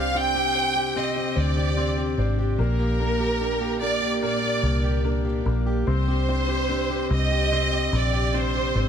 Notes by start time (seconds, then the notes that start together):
Already playing: C2 C3 C4 D4 G4 C5 F5
0.15 C4 D4 G5
0.35 C4 G4
0.55 C5
0.76 G4
0.96 C3 C4 D#5
1.16 C4 G4
1.36 D2 D4 C5 D5
1.56 G4
1.77 C4 D4
1.98 C4 G4
2.17 G#1 D4 C5
2.39 G4
2.58 A#1 A#2 A#3 A#4
2.79 A#3 G4
3.00 A#3 D4
3.20 G4
3.40 A#3 D4
3.61 A#3 G4
3.81 A#3 D4 D5
4.02 G4
4.23 A#2 A#3 D5
4.43 A#3 G4
4.63 C2 A#3 D4
4.84 G4
5.05 A#3 D4
5.25 A#3 G4
5.46 A#1 A#3 D4
5.66 G4
5.87 C2 C3 C4 C5
6.08 C4 G4
6.28 C4 D4
6.48 G4
6.69 C4 D4
6.90 C4 G4
7.10 C2 C4 D#5
7.31 G4
7.52 C3 C4
7.72 C4 G4
7.93 A#1 C4 D4 D5
8.13 G4
8.33 C4 D4 C5
8.54 C4 G4
8.75 G#1 C4 D4